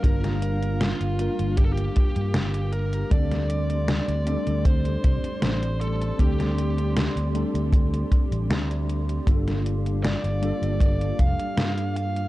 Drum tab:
HH |xxxxxxxxxxxxxxxx|xxxxxxxxxxxxxxxx|xxxxxxxxxxxxxxxx|xxxxxxxxxxxxxxxx|
SD |-o--o-------o---|-o--o-------o---|-o--o-------o---|-o--o-------o---|
BD |o-------o-o-----|o-------o-o-----|o-------o-o-----|o-------o-o-----|